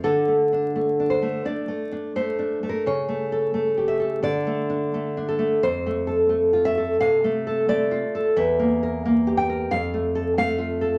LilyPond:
\new Staff \with { instrumentName = "Nylon-string guitar" } { \time 4/4 \key d \minor \tempo 4 = 87 << { a'4. c''8 d''4 c''8. bes'16 | cis''4. e''8 d''4. a'8 | c''4. e''8 f''4 d''4 | e''4. g''8 f''4 f''4 | } \\ { \tuplet 3/2 { d8 a8 d'8 a8 d'8 a8 d'8 a8 d'8 a8 d'8 a8 } | \tuplet 3/2 { cis8 a8 a'8 a8 g'8 a'8 d8 a8 d'8 a8 d'8 a8 } | \tuplet 3/2 { f,8 a8 a'8 a8 f'8 a'8 c8 a8 a'8 a8 f'8 a'8 } | \tuplet 3/2 { e,8 bes8 bes'8 bes8 g'8 bes'8 f,8 a8 a'8 a8 f'8 a'8 } | } >> }